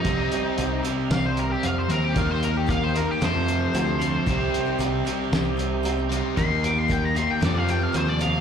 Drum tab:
HH |xxxxxxxx|xxxxxxxx|xxxxxxxx|xxxxxxxx|
TB |----x---|----x---|----x---|----x---|
SD |----o---|----o---|----o---|----o---|
BD |o-------|o-o-----|o-------|o-o-----|